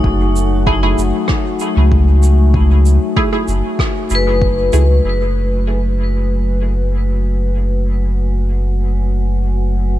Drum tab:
SH |-x-x-x-x|-x-x-x-x|--------|--------|
SD |----r---|----r---|--------|--------|
BD |o-o-o-o-|o-o-o-o-|--------|--------|